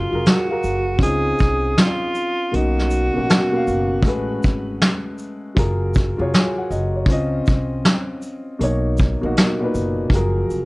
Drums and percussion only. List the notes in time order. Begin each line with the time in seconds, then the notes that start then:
0.26 snare, closed hi-hat
0.64 shaker
0.99 kick, closed hi-hat
1.39 kick, shaker
1.78 snare, closed hi-hat
2.15 shaker
2.54 closed hi-hat
2.79 snare
2.90 closed hi-hat, shaker
3.29 snare, closed hi-hat
3.67 shaker
4.03 kick, closed hi-hat
4.43 kick, shaker
4.82 snare, closed hi-hat
5.18 shaker
5.57 kick, closed hi-hat
5.94 kick, shaker
6.33 snare, closed hi-hat
6.71 shaker
7.06 kick, closed hi-hat
7.46 kick, shaker
7.85 snare, closed hi-hat
8.22 shaker
8.61 closed hi-hat
8.97 kick, shaker
9.37 snare, closed hi-hat
9.75 shaker
10.10 kick, closed hi-hat
10.50 shaker